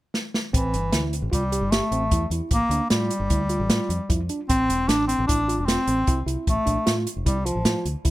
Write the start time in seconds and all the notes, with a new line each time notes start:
0.14 snare
0.34 snare
0.52 A1 E3 C4, kick, closed hi-hat
0.74 G1, closed hi-hat
0.92 D2 E4, snare, closed hi-hat
1.13 closed hi-hat
1.22 A1
1.32 C2 G3 F4, kick, closed hi-hat
1.52 G4, closed hi-hat
1.61 G1
1.71 A3 G4, snare, closed hi-hat
1.91 A1 C4, closed hi-hat
2.11 E2 E4, kick, closed hi-hat
2.30 E2 E4, closed hi-hat
2.51 A1 A#3, kick, closed hi-hat
2.69 D2 D4, closed hi-hat
2.90 A2 G3 F4, snare, closed hi-hat
3.11 closed hi-hat
3.20 G1
3.30 D2 E4, kick, closed hi-hat
3.49 F4, closed hi-hat
3.60 A1
3.69 A2 F4, snare, closed hi-hat
3.89 F2, closed hi-hat
4.09 F2 E4, kick, closed hi-hat
4.29 D4, closed hi-hat
4.49 A1 C4, kick, closed hi-hat
4.69 E1, closed hi-hat
4.88 A1 D4, snare, closed hi-hat
5.07 C4, closed hi-hat
5.18 A1
5.27 A1 D4 E4, kick, closed hi-hat
5.48 F4, closed hi-hat
5.58 E1 D4
5.66 C4 F4, snare, closed hi-hat
5.87 A1 C4, closed hi-hat
6.07 C2 E4, kick, closed hi-hat
6.26 C2 E4, closed hi-hat
6.47 A1 A3, kick, closed hi-hat
6.66 A#1 D4, kick, closed hi-hat
6.86 A2 F4, snare, closed hi-hat
7.07 closed hi-hat
7.16 F1
7.26 C2 G3 E4, kick, closed hi-hat
7.45 F3 F4, closed hi-hat
7.55 A1
7.65 A2 F4, snare, closed hi-hat
7.85 D2, closed hi-hat
8.05 D2 E4, kick, closed hi-hat